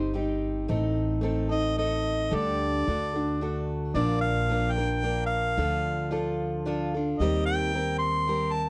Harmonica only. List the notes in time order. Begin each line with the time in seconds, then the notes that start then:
Already playing: C5
1.51 D#5
1.78 D#5
2.35 D5
3.95 D5
4.21 F5
4.72 G5
5.26 F5
7.19 D#5
7.46 G5
7.98 C6
8.52 A5